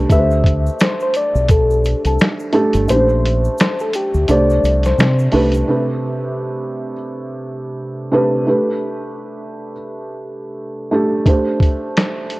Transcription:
Already playing: felt piano A3 D4 G4 B4
0.10 fingered electric bass D2, felt piano A3 D4 G4 B4, soft synth lead E5, kick, closed hi-hat, shaker
0.18 felt piano C5
0.31 shaker
0.44 kick, closed hi-hat
0.66 shaker
0.79 soft synth lead C5, finger snap, snare, closed hi-hat, shaker
1.00 soft synth lead C5, shaker
1.14 soft synth lead D5, closed hi-hat, shaker
1.35 fingered electric bass B1, shaker
1.49 soft synth lead A4, kick, closed hi-hat, shaker
1.71 shaker
1.84 closed hi-hat, shaker
2.05 fingered electric bass C2, soft synth lead A4, closed hi-hat, shaker
2.19 finger snap, snare, closed hi-hat, shaker
2.40 shaker
2.53 felt piano A3 D4 G4 A4, closed hi-hat
2.73 fingered electric bass G1, closed hi-hat, shaker
2.88 fingered electric bass A#1, felt piano A3 C#4 G4 C5, soft synth lead C5, closed hi-hat, shaker
2.95 felt piano D4
3.09 shaker
3.26 closed hi-hat
3.44 shaker
3.58 soft synth lead C5, finger snap, snare, closed hi-hat, shaker
3.79 soft synth lead A4, shaker
3.93 soft synth lead G4, closed hi-hat, shaker
4.14 fingered electric bass D2, shaker
4.28 fingered electric bass C2, felt piano A3 D4 G4 C5, soft synth lead D5, closed hi-hat, shaker
4.50 shaker
4.63 fingered electric bass C2, closed hi-hat, shaker
4.83 soft synth lead C5, snare, closed hi-hat, shaker
4.98 fingered electric bass C3, finger snap, snare, closed hi-hat, shaker
5.19 shaker
5.32 fingered electric bass C2, felt piano A3 D4 G4 B4, open hi-hat
5.52 closed hi-hat, shaker
5.68 felt piano C3 A3 D4 G4 B4
8.12 felt piano C3 A3 D4 G4 B4
8.47 felt piano A3 D4 G4 B4
10.91 felt piano A3 D4 G4 A4
11.26 felt piano A3 D4 G4 C5, kick, closed hi-hat
11.60 kick, closed hi-hat
11.97 finger snap, snare, closed hi-hat
12.30 closed hi-hat

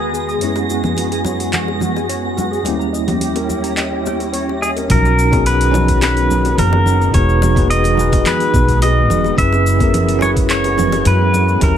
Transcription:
Already playing: tine electric piano E2 D#3 G#3 B3 F#4, string machine G#3 B3 G#4, pedal steel guitar G#4, synth texture A#6
0.00 steel pan B4
0.14 steel pan G#4, shaker
0.29 steel pan D#6, shaker
0.38 tine electric piano F#2 G#3 B3, string machine F#4, steel pan C#5, open hi-hat, shaker
0.43 tine electric piano C#4 E4
0.56 steel pan F#4, high bongo, shaker
0.70 steel pan F#4, shaker
0.84 steel pan G#4, high conga, low conga, shaker
0.96 steel pan F#4, open hi-hat, high bongo, shaker
1.12 steel pan G#5, open hi-hat
1.25 steel pan C#5, high bongo, low conga, shaker
1.40 steel pan F#4, open hi-hat, shaker
1.53 steel pan F#4, clap, open hi-hat, low conga, shaker
1.68 steel pan G#4, high bongo
1.80 steel pan F#4, high conga, low conga, shaker
1.96 steel pan G#5, high bongo, shaker
2.09 steel pan C#5, open hi-hat, shaker
2.24 steel pan F#4
2.37 steel pan F#4, high bongo, low conga, shaker
2.51 steel pan G#4, shaker
2.63 tine electric piano D#2 G3 A#3, string machine C#4 E4 G4, steel pan G4, open hi-hat, high bongo, shaker
2.67 tine electric piano C#4 E4
2.79 steel pan A#5, shaker
2.93 steel pan D#5, shaker
3.07 steel pan G4, open hi-hat, high bongo, high conga, low conga, shaker
3.21 steel pan G4, open hi-hat, shaker
3.36 steel pan A#4, open hi-hat, high bongo
3.49 steel pan G4, low conga, shaker
3.64 steel pan A#5, open hi-hat, shaker
3.77 steel pan D#5, clap, open hi-hat, high bongo, shaker
3.92 steel pan G4
4.05 steel pan G5, high bongo, high conga, shaker
4.20 steel pan C#5, open hi-hat, shaker
4.33 steel pan C#5, open hi-hat, shaker
4.48 steel pan G4, high bongo
4.62 pedal steel guitar G#4, steel pan D#5, shaker
4.76 steel pan A#4, open hi-hat, high bongo, shaker
4.88 upright bass B1, string machine D#3 F#3 B3 F#4, tine electric piano C#4 D#4 F#4 A#4, pedal steel guitar A#4, kick, open hi-hat, low conga, shaker
5.05 high bongo, shaker
5.19 shaker
5.31 tine electric piano C#4 D#4 F#4 G#4, kick, open hi-hat, high bongo, high conga, shaker
5.46 pedal steel guitar B4, open hi-hat, shaker
5.61 open hi-hat, shaker
5.71 tine electric piano C#4 D#4 F#4, high bongo, low conga, shaker
5.88 kick, open hi-hat, shaker
6.02 pedal steel guitar B4, clap, open hi-hat, high bongo, shaker
6.17 open hi-hat, shaker
6.30 high conga, low conga, shaker
6.45 open hi-hat, high bongo, shaker
6.58 upright bass F#1, pedal steel guitar A#4, open hi-hat, low conga, shaker
6.73 high bongo
6.86 low conga, shaker
7.02 shaker
7.12 upright bass E1, string machine D#3 G#3, tine electric piano D#4 F#4 G#4 B4, pedal steel guitar C#5, kick, open hi-hat, high bongo, shaker
7.29 shaker
7.42 high bongo, low conga, shaker
7.55 tine electric piano D#4 F#4 G#4 B4, kick, open hi-hat, high conga, shaker
7.70 pedal steel guitar D#5, open hi-hat, shaker
7.84 open hi-hat, high bongo, shaker
7.95 tine electric piano D#4 F#4 G#4, low conga, shaker
8.01 tine electric piano B4
8.12 kick, open hi-hat, high bongo, shaker
8.26 pedal steel guitar B4, clap, open hi-hat, low conga, shaker
8.40 open hi-hat, shaker
8.53 upright bass B1, kick, high bongo, high conga, shaker
8.68 kick, open hi-hat, shaker
8.82 pedal steel guitar D#5, open hi-hat, high bongo, shaker
9.10 upright bass E1, low conga, shaker
9.24 high bongo, shaker
9.37 upright bass F#1, string machine E3 F#4, tine electric piano C#4 E4 G#4 B4, pedal steel guitar E5, kick, open hi-hat, shaker
9.53 high bongo, shaker
9.66 shaker
9.79 tine electric piano C#4 E4 G#4 A#4, kick, open hi-hat, high conga, shaker
9.94 open hi-hat, high bongo, low conga, shaker
10.09 open hi-hat, shaker
10.19 tine electric piano C#4 E4 G#4, pedal steel guitar C#5, high bongo, low conga, shaker
10.25 tine electric piano B4
10.36 kick, open hi-hat, shaker
10.50 pedal steel guitar C#5, clap, open hi-hat, shaker
10.64 open hi-hat, high bongo, shaker
10.78 high conga, low conga, shaker
10.92 open hi-hat, high bongo, shaker
11.05 upright bass F#2, pedal steel guitar B4, open hi-hat, shaker
11.34 high bongo, low conga, shaker
11.48 shaker
11.60 upright bass D#2, string machine G3 C#4 E4, tine electric piano C#4 E4 G4 A#4, pedal steel guitar A#4, kick, open hi-hat, high bongo, low conga, shaker

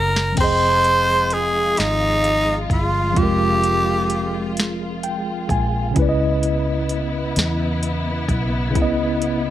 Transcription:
Already playing: fingered electric bass F#1, tine electric piano C#3 B3 E4 C#5 D#5, tenor saxophone A#4
0.16 snare
0.32 tine electric piano F3 C4
0.37 fingered electric bass F1, string section G#3 F4, tenor saxophone C5, tine electric piano G5, kick, closed hi-hat, crash
0.41 tine electric piano G#4 D#5
0.84 closed hi-hat
1.30 tenor saxophone G#4, closed hi-hat
1.77 fingered electric bass G#1, tenor saxophone D#4, snare, closed hi-hat
2.24 closed hi-hat
2.70 fingered electric bass G1, tenor saxophone F4, kick, closed hi-hat
3.11 tine electric piano F3 C4
3.16 fingered electric bass F1, tine electric piano G#3 F4, tenor saxophone G4, kick, closed hi-hat
3.23 tine electric piano A#4
3.64 closed hi-hat
4.10 closed hi-hat
4.57 snare, closed hi-hat
5.03 tine electric piano G5, closed hi-hat
5.49 fingered electric bass A#1, tine electric piano G#5, kick, closed hi-hat
5.91 tine electric piano C#3 C#4
5.96 fingered electric bass C#2, string section B3 E4, tine electric piano E4 B4, kick, closed hi-hat
6.02 tine electric piano D5
6.09 tine electric piano D#5
6.43 closed hi-hat
6.89 closed hi-hat
7.36 fingered electric bass E2, snare, closed hi-hat
7.83 closed hi-hat
8.28 fingered electric bass B1, kick, closed hi-hat
8.70 tine electric piano C#3 C#4
8.75 fingered electric bass C#2, tine electric piano B3 E4, kick, closed hi-hat
8.82 tine electric piano D#5
9.22 closed hi-hat

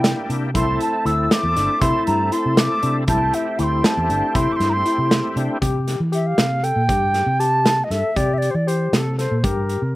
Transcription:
Already playing: fingered electric bass C3, tonewheel organ A#3 D4 E4 G4, tine electric piano E4, flute G5
0.04 snare, closed hi-hat
0.29 fingered electric bass C3, tine electric piano D4, closed hi-hat
0.54 fingered electric bass C2, tonewheel organ A3 C4 E4 A4, tine electric piano E4, flute C6, kick, closed hi-hat
0.80 flute A5, closed hi-hat
1.05 fingered electric bass D2, tine electric piano E4, flute E6, closed hi-hat
1.23 flute E6
1.31 flute D6, snare, closed hi-hat
1.43 fingered electric bass E2
1.56 fingered electric bass G1, tine electric piano D4, snare, closed hi-hat
1.81 fingered electric bass C3, tine electric piano E4, flute C6, kick, closed hi-hat
2.07 fingered electric bass G2, flute A#5, closed hi-hat
2.32 tine electric piano E4, flute C6, closed hi-hat
2.46 fingered electric bass C3
2.57 flute D6, snare, closed hi-hat
2.83 fingered electric bass C3, tine electric piano D4, closed hi-hat
3.07 fingered electric bass C2, tonewheel organ A3 C4 E4 G4, tine electric piano E4, flute A5, kick, closed hi-hat
3.33 flute E5, closed hi-hat
3.59 fingered electric bass D2, tine electric piano E4, flute D6, closed hi-hat
3.63 flute C6
3.84 flute A5, snare, closed hi-hat
3.97 fingered electric bass E2
4.10 fingered electric bass G1, tine electric piano D4, closed hi-hat
4.35 fingered electric bass C3, tine electric piano E4, flute C6, kick, closed hi-hat
4.52 flute C6 D6
4.60 fingered electric bass G2, snare, closed hi-hat
4.69 flute A#5 C6
4.86 tine electric piano E4, closed hi-hat
4.98 fingered electric bass C3
5.11 snare, closed hi-hat
5.36 fingered electric bass C3, tine electric piano D4, closed hi-hat
5.62 fingered electric bass C3, tine electric piano G4, kick, closed hi-hat
5.88 snare, closed hi-hat
6.00 fingered electric bass E3
6.12 tine electric piano G4, flute E5, closed hi-hat
6.27 flute F5
6.38 fingered electric bass C3, snare, closed hi-hat
6.63 tine electric piano A4, flute G5, closed hi-hat
6.76 fingered electric bass A#2
6.89 fingered electric bass G2, tine electric piano G4, kick, closed hi-hat
7.14 snare, closed hi-hat
7.26 fingered electric bass C3
7.40 tine electric piano G4, flute A5, closed hi-hat
7.66 snare, closed hi-hat
7.84 flute D#5
7.90 fingered electric bass G2, tine electric piano A4, flute E5, snare, closed hi-hat
8.16 fingered electric bass C3, tine electric piano G4, flute D5, kick, closed hi-hat
8.34 flute E5
8.38 flute D5
8.42 closed hi-hat
8.51 fingered electric bass E3, flute C5
8.55 flute D5
8.67 tine electric piano G4, flute C5, closed hi-hat
8.93 fingered electric bass C3, flute C5, snare, closed hi-hat
8.98 flute A4
9.19 tine electric piano A4, flute C5, snare, closed hi-hat
9.31 fingered electric bass A#2
9.38 flute C5
9.44 fingered electric bass G2, tine electric piano G4, flute A#4, kick, closed hi-hat
9.69 closed hi-hat
9.82 fingered electric bass C3

